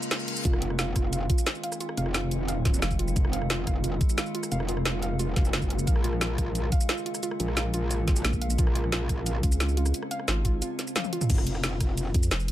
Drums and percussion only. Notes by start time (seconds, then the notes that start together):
0.03 shaker
0.11 snare, closed hi-hat, shaker
0.20 shaker
0.28 closed hi-hat
0.36 shaker
0.45 kick, closed hi-hat, shaker
0.53 cross-stick
0.62 closed hi-hat
0.70 cross-stick
0.79 snare, closed hi-hat, shaker
0.96 kick, cross-stick, closed hi-hat, shaker
1.13 closed hi-hat, shaker
1.30 kick, closed hi-hat, shaker
1.38 shaker
1.47 snare, closed hi-hat, shaker
1.55 shaker
1.64 closed hi-hat
1.72 cross-stick, shaker
1.80 closed hi-hat, shaker
1.89 cross-stick
1.97 closed hi-hat, shaker
2.06 cross-stick
2.14 snare, closed hi-hat, shaker
2.31 closed hi-hat, shaker
2.48 closed hi-hat, shaker
2.65 kick, snare, closed hi-hat, shaker
2.74 shaker
2.82 snare, closed hi-hat, shaker
2.91 kick, shaker
2.99 closed hi-hat
3.08 shaker
3.16 kick, closed hi-hat, shaker
3.25 cross-stick
3.33 closed hi-hat
3.42 cross-stick
3.50 snare, closed hi-hat, shaker
3.67 kick, cross-stick, closed hi-hat, shaker
3.84 closed hi-hat, shaker
4.01 kick, closed hi-hat, shaker
4.09 shaker
4.18 snare, closed hi-hat, shaker
4.26 shaker
4.35 closed hi-hat
4.43 cross-stick, shaker
4.52 closed hi-hat, shaker
4.60 cross-stick
4.69 closed hi-hat, shaker
4.77 cross-stick
4.85 snare, closed hi-hat, shaker
5.02 closed hi-hat, shaker
5.19 closed hi-hat, shaker
5.36 kick, snare, closed hi-hat, shaker
5.45 shaker
5.53 snare, closed hi-hat, shaker
5.62 kick, shaker
5.70 closed hi-hat
5.79 shaker
5.87 kick, closed hi-hat, shaker
5.96 cross-stick
6.04 closed hi-hat
6.13 cross-stick
6.21 snare, closed hi-hat, shaker
6.38 kick, cross-stick, closed hi-hat, shaker
6.55 closed hi-hat, shaker
6.72 kick, closed hi-hat, shaker
6.81 shaker
6.89 snare, closed hi-hat, shaker
6.98 shaker
7.06 closed hi-hat
7.14 cross-stick, shaker
7.23 closed hi-hat, shaker
7.31 cross-stick
7.40 closed hi-hat, shaker
7.48 cross-stick
7.57 snare, closed hi-hat, shaker
7.74 closed hi-hat, shaker
7.91 closed hi-hat, shaker
8.08 kick, snare, closed hi-hat, shaker
8.16 shaker
8.25 snare, closed hi-hat, shaker
8.33 kick, shaker
8.42 closed hi-hat
8.50 shaker
8.58 kick, closed hi-hat, shaker
8.67 cross-stick
8.75 closed hi-hat
8.84 cross-stick
8.92 snare, closed hi-hat, shaker
9.09 kick, cross-stick, closed hi-hat, shaker
9.26 closed hi-hat, shaker
9.43 kick, closed hi-hat, shaker
9.52 shaker
9.60 snare, closed hi-hat, shaker
9.69 shaker
9.77 closed hi-hat
9.86 cross-stick, shaker
9.94 closed hi-hat, shaker
10.03 cross-stick
10.11 closed hi-hat, shaker
10.20 cross-stick
10.28 snare, closed hi-hat, shaker
10.45 kick, closed hi-hat, shaker
10.62 closed hi-hat, shaker
10.79 snare, closed hi-hat, shaker
10.87 shaker
10.96 snare, closed hi-hat, high tom, shaker
11.04 high tom, shaker
11.13 closed hi-hat
11.21 mid tom, shaker
11.30 kick, closed hi-hat, crash, ride, shaker
11.38 cross-stick
11.47 closed hi-hat
11.55 cross-stick
11.64 snare, closed hi-hat, ride, shaker
11.80 kick, cross-stick, closed hi-hat, shaker
11.97 closed hi-hat, ride, shaker
12.14 kick, closed hi-hat, shaker
12.23 shaker
12.31 snare, closed hi-hat, ride, shaker
12.40 shaker
12.48 closed hi-hat